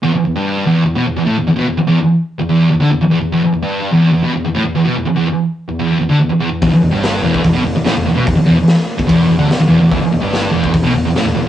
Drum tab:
HH |----------------|----------------|----------------|----------------|
SD |----------------|----------------|----------------|----------------|
BD |----------------|----------------|----------------|----------------|

HH |o---o---o---o---|o---o---o---o---|o---o---o---o---|
SD |----o-------o---|----o--o----o---|----o-------o---|
BD |o------oo-------|o------oo-------|o------oo-------|